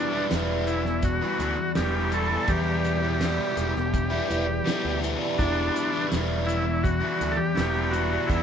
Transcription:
0.00 0.30 E2 medium
0.00 0.30 B2 medium
0.00 0.14 E3 medium
0.00 0.14 G3 medium
0.00 8.43 G3 medium
0.00 0.13 B3 medium
0.00 0.27 D4 medium
0.00 0.12 E4 medium
0.00 8.43 E4 medium
0.00 8.43 D5 medium
0.12 0.31 E3 medium
0.12 0.32 G3 medium
0.12 0.32 B3 medium
0.12 0.33 E4 medium
0.30 1.19 E1 medium
0.30 1.75 E2 medium
0.30 1.22 B2 medium
0.30 0.85 E3 medium
0.30 0.85 G3 medium
0.30 0.85 B3 loud
0.30 0.84 E4 medium
0.30 snare loud
0.30 closed hi-hat medium
0.67 1.05 E4 medium
0.67 closed hi-hat medium
0.85 muted overdriven electric guitar stroke soft
0.85 snare soft
1.03 1.72 F#4 medium
1.03 kick medium
1.03 closed hi-hat medium
1.21 1.38 E3 soft
1.21 1.39 G3 medium
1.21 1.40 B3 medium
1.21 1.41 E4 medium
1.39 1.54 D2 medium
1.39 1.58 E3 medium
1.39 1.58 G3 medium
1.39 1.58 B3 medium
1.39 1.57 E4 medium
1.39 closed hi-hat soft
1.58 muted overdriven electric guitar stroke soft
1.75 2.35 E1 medium
1.75 2.47 E2 medium
1.75 2.47 B2 medium
1.75 2.12 E3 medium
1.75 2.13 G3 medium
1.75 2.14 B3 medium
1.75 2.14 E4 medium
1.75 2.13 G4 medium
1.75 snare medium
1.75 closed hi-hat medium
2.12 2.32 E3 medium
2.12 2.32 G3 medium
2.12 2.31 B3 medium
2.12 2.30 E4 medium
2.12 2.50 A4 medium
2.12 closed hi-hat medium
2.30 2.48 E3 medium
2.30 2.49 G3 medium
2.30 2.50 B3 medium
2.30 2.49 E4 medium
2.47 3.20 E2 medium
2.47 3.37 E2 medium
2.47 3.20 B2 medium
2.47 3.04 E3 medium
2.47 3.03 G3 medium
2.47 3.03 B3 medium
2.47 3.01 E4 medium
2.47 3.22 G4 loud
2.47 kick medium
2.47 closed hi-hat medium
2.85 closed hi-hat medium
3.02 3.21 E3 medium
3.02 3.22 G3 medium
3.02 3.22 B3 medium
3.02 3.22 E4 medium
3.20 4.64 E2 medium
3.20 4.11 B2 medium
3.20 3.75 E3 medium
3.20 3.75 G3 medium
3.20 3.75 B3 loud
3.20 3.74 E4 medium
3.20 4.99 G4 medium
3.20 snare loud
3.20 closed hi-hat medium
3.57 3.72 E1 medium
3.57 closed hi-hat medium
3.75 4.20 E1 medium
3.75 muted overdriven electric guitar stroke soft
3.75 snare soft
3.94 kick medium
3.94 closed hi-hat medium
4.10 4.28 E3 medium
4.10 4.28 G3 medium
4.10 4.29 B3 medium
4.10 4.30 E4 medium
4.28 4.59 E1 medium
4.28 4.47 E3 medium
4.28 4.47 G3 medium
4.28 4.47 B3 medium
4.28 4.46 E4 medium
4.28 closed hi-hat medium
4.46 muted overdriven electric guitar stroke soft
4.64 5.37 E2 medium
4.64 5.38 B2 medium
4.64 5.00 E3 medium
4.64 5.01 G3 medium
4.64 5.03 B3 medium
4.64 5.03 E4 medium
4.64 snare medium
4.64 closed hi-hat medium
4.85 5.14 D2 medium
5.01 5.21 E3 medium
5.01 5.20 G3 medium
5.01 5.20 B3 medium
5.01 5.19 E4 medium
5.01 closed hi-hat medium
5.19 5.39 E3 medium
5.19 5.40 G3 medium
5.19 5.40 B3 medium
5.19 5.40 E4 medium
5.38 5.68 E1 medium
5.38 6.10 E2 medium
5.38 6.10 B2 medium
5.38 5.94 E3 medium
5.38 5.94 G3 medium
5.38 5.93 B3 medium
5.38 6.07 D4 loud
5.38 5.92 E4 medium
5.38 kick medium
5.38 closed hi-hat medium
5.76 closed hi-hat medium
5.92 6.11 E3 medium
5.92 6.12 G3 medium
5.92 6.12 B3 medium
5.92 6.12 E4 medium
6.10 7.00 E1 medium
6.10 7.55 E2 medium
6.10 7.02 B2 medium
6.10 6.66 E3 medium
6.10 6.66 G3 medium
6.10 6.66 B3 medium
6.10 6.66 E4 medium
6.10 snare loud
6.10 closed hi-hat medium
6.46 6.84 E4 medium
6.46 closed hi-hat medium
6.66 muted overdriven electric guitar stroke soft
6.83 7.32 F#4 medium
6.83 kick loud
6.83 closed hi-hat medium
7.01 7.18 E3 medium
7.01 7.20 G3 medium
7.01 7.21 B3 medium
7.01 7.21 E4 medium
7.19 7.35 D2 medium
7.19 7.38 E3 medium
7.19 7.38 G3 medium
7.19 7.38 B3 medium
7.19 7.38 E4 medium
7.19 closed hi-hat medium
7.32 7.38 A4 medium
7.37 7.94 G4 loud
7.37 muted overdriven electric guitar stroke soft
7.55 8.16 E1 medium
7.55 8.27 E2 medium
7.55 8.28 B2 medium
7.55 7.90 E3 medium
7.55 7.91 G3 medium
7.55 7.93 B3 medium
7.55 7.94 E4 loud
7.55 snare medium
7.55 closed hi-hat medium
7.91 8.12 E3 medium
7.91 8.11 G3 medium
7.91 8.10 B3 medium
7.91 8.09 E4 medium
7.91 8.29 F#4 medium
7.91 closed hi-hat medium
8.10 8.28 E3 medium
8.10 8.28 G3 medium
8.10 8.29 B3 medium
8.10 8.30 E4 medium
8.27 8.43 E2 medium
8.27 8.43 B2 medium
8.27 8.43 E3 medium
8.27 8.43 G3 medium
8.27 8.43 B3 medium
8.27 8.43 E4 medium
8.27 kick medium
8.27 closed hi-hat medium
8.31 8.43 E4 medium

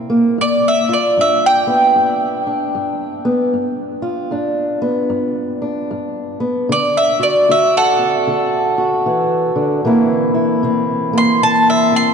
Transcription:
0.00 0.33 C3 medium
0.00 0.37 C4 medium
0.00 0.39 E4 medium
0.10 0.36 A#3 medium
0.38 1.12 G2 medium
0.38 0.66 D5 loud
0.68 0.92 E5 medium
0.89 3.51 F4 medium
0.93 1.18 D5 medium
1.17 1.91 G2 medium
1.17 2.46 D4 medium
1.17 1.45 E5 loud
1.46 3.78 G5 loud
1.67 3.24 B3 medium
1.96 2.70 G2 medium
2.47 4.31 D4 medium
2.75 3.49 G2 medium
3.25 3.51 B3 medium
3.54 4.27 G2 medium
4.02 6.66 F4 medium
4.31 5.05 G2 medium
4.31 5.60 D4 medium
4.82 6.39 B3 medium
5.10 5.84 G2 medium
5.62 6.67 D4 medium
5.91 6.64 G2 medium
6.40 6.66 B3 medium
6.69 7.43 D3 medium
6.69 6.97 D5 medium
6.97 7.22 E5 medium
7.20 7.48 F#4 medium
7.20 7.48 D5 medium
7.49 8.22 D3 medium
7.49 8.77 F#4 medium
7.49 7.76 E5 medium
7.77 10.08 A4 loud
7.77 10.08 F#5 loud
7.99 9.82 C4 medium
8.27 9.00 D3 medium
8.78 9.82 F#4 medium
9.06 9.55 E3 medium
9.56 9.84 D3 medium
9.85 10.58 C3 medium
9.85 12.14 E3 medium
9.85 11.12 A#3 medium
9.85 10.63 C4 medium
9.85 10.33 E4 medium
10.34 12.14 E4 medium
10.63 11.36 C3 medium
10.63 11.91 C4 medium
11.13 12.14 A#3 medium
11.18 11.42 C6 loud
11.42 12.14 C3 medium
11.42 11.68 A5 loud
11.70 11.94 E5 medium
11.92 12.14 C4 medium
11.96 12.14 C6 loud

